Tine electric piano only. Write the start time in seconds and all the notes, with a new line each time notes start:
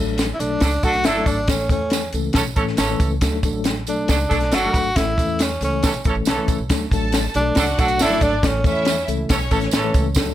Already playing: F#3 A3 D4 A4
0.40 F#3 A3 D4 A4
0.83 F#3 A3 D4 A4
1.17 F#3 A3 D4 A4
1.50 E3 A3 C#4 A4
1.70 E3 A3 C#4 A4
2.14 E3 A3 C#4 A4
2.58 E3 A3 C#4 A4
2.90 E3 A3 C#4 A4
3.23 F#3 A3 D4 A4
3.45 E3 A3 D4 A4
3.51 F#3
3.88 F#3 A3 D4 A4
4.31 F#3 A3 D4 A4
4.65 F#3 A3 D4 A4
4.98 E3 A3 C#4 A4
5.19 E3 A3 C#4 A4
5.62 E3 A3 C#4 A4
6.05 E3 A3 C#4 A4
6.38 E3 A3 C#4 A4
6.70 F#3 A3 D4 A4
6.93 F#3 A3 D4 A4
7.35 F#3 A3 D4 G4
7.40 A4
7.78 F#3 A3 D4 A4
8.10 F#3 A3 D4 A4
8.43 E3 A3 C#4 A4
8.64 E3 A3 C#4 A4
9.08 E3 A3 C#4 A4
9.51 E3 A3 C#4 A4
9.84 E3 A3 C#4 A4
10.15 F#3 A3 D4 A4